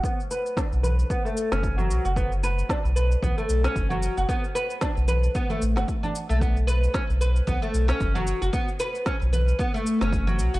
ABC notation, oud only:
X:1
M:4/4
L:1/16
Q:"Swing 16ths" 1/4=113
K:Bm
V:1 name="Oud"
B, z B2 D z B2 B, A,2 C2 F,2 F | B, z B2 D z B2 B, A,2 C2 F,2 F | B, z B2 D z B2 B, A, z F z D z A, | B, z B2 C z B2 B, A,2 C2 F,2 F |
B, z B2 C z B2 B, A,2 C2 F,2 F |]